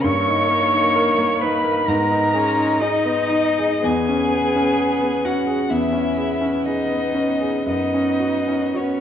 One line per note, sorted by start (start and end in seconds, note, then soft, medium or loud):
0.01 1.86 G2 medium
0.01 1.90 A#3 medium
0.01 1.43 C#5 medium
0.01 1.42 C#6 medium
0.28 0.64 D#4 soft
0.49 0.86 A#4 soft
0.73 1.09 D#4 soft
0.96 1.33 A#4 medium
1.19 1.56 A#3 soft
1.40 1.80 D#4 soft
1.40 1.88 B4 medium
1.40 1.90 B5 medium
1.64 1.88 A#4 soft
1.87 3.79 G#2 medium
1.87 2.35 B3 medium
1.87 2.84 A#4 medium
1.87 2.81 A#5 medium
2.11 2.49 D#4 soft
2.34 2.83 C#4 medium
2.34 2.72 G#4 soft
2.57 2.96 D#4 soft
2.80 3.83 D#4 medium
2.80 3.82 D#4 medium
2.80 3.21 G#4 soft
2.80 3.86 D#5 medium
3.05 3.48 B3 soft
3.31 3.73 D#4 soft
3.58 3.84 G#4 soft
3.83 5.67 E2 medium
3.83 5.67 B3 medium
3.83 5.26 G#4 medium
3.83 5.27 G#5 medium
4.09 4.46 C#4 soft
4.31 4.68 G#4 soft
4.56 4.92 C#4 soft
4.77 5.15 G#4 soft
5.01 5.39 B3 soft
5.24 5.62 C#4 soft
5.24 5.72 F#4 medium
5.24 5.72 F#5 medium
5.47 5.85 G#4 soft
5.70 7.65 E2 soft
5.70 7.65 B3 soft
5.70 6.67 E4 medium
5.70 6.67 E5 medium
5.92 6.31 C#4 soft
6.17 6.56 G#4 soft
6.41 6.81 C#4 soft
6.65 7.69 D#4 medium
6.65 7.06 G#4 soft
6.65 7.69 D#5 medium
6.91 7.32 B3 soft
7.14 7.57 C#4 soft
7.41 7.69 G#4 soft
7.66 9.00 F#2 soft
7.66 8.75 B3 soft
7.66 8.80 D#4 medium
7.66 8.78 D#5 medium
7.94 8.39 C#4 soft
8.20 8.65 F#4 soft
8.47 8.92 C#4 soft
8.75 9.00 B3 soft
8.75 9.00 C#4 soft
8.75 9.00 F#4 soft
8.75 9.00 C#5 soft